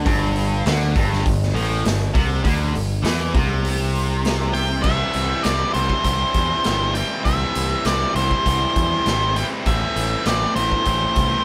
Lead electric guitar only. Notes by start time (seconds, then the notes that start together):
4.54 G5
4.82 E5
5.43 D5
5.74 C5
6.94 G5
7.25 E5
7.86 D5
8.16 C5
9.37 G5
9.67 E5
10.27 D5
10.56 C5